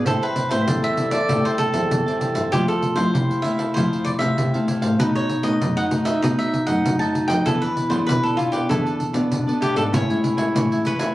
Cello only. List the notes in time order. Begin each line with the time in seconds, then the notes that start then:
0.06 A2
0.51 A2
0.68 E2
1.30 A2
1.74 E2
1.92 E2
2.36 G2
2.53 F2
2.97 F2
3.15 C3
3.76 F2
4.21 C3
4.38 C3
4.82 A2
5.00 B2
5.44 B2
5.61 F#2
6.23 B2
6.67 F#2
6.85 F#2
7.29 F2
7.46 E2
7.90 E2
8.08 B2
8.70 E2
9.14 B2
9.31 B2
9.75 G#2
9.93 A2
10.55 A2